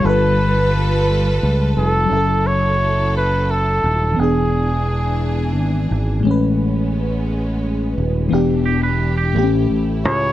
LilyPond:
<<
  \new Staff \with { instrumentName = "Flugelhorn" } { \time 6/8 \key fis \minor \tempo 4. = 58 b'2 r8 a'8~ | a'8 cis''4 b'8 a'4 | gis'2 r4 | r2. |
r2 r8 cis''8 | }
  \new Staff \with { instrumentName = "Clean electric guitar" } { \time 6/8 \key fis \minor r2. | r2. | r2. | r2. |
r8 g'16 b'8 g'8 r4 r16 | }
  \new Staff \with { instrumentName = "String section" } { \time 6/8 \key fis \minor << { <g b'>2. | a'2. | gis'2. | cis'2. |
g'2. | } \\ { <f' a'>2. | <fis e'>2. | <e d'>2. | <gis b>2. |
<e d'>4. <a e'>4. | } >> }
  \new Staff \with { instrumentName = "FM electric piano" } { \time 6/8 \key fis \minor <g f' a' b'>2. | <fis cis' e' a'>2. | <e b d' gis'>2. | <a, gis cis' b'>2. |
<e b d' g'>4. <a, a b cis' g'>4. | }
  \new Staff \with { instrumentName = "Fingered electric bass" } { \clef bass \time 6/8 \key fis \minor g,,2 cis,8 f,,8 | fis,,2~ fis,,8 dis,,8 | e,,2 gis,,8 gis,,8 | a,,2~ a,,8 dis,,8 |
e,,4. a,,8 a,,8 cis,8 | }
>>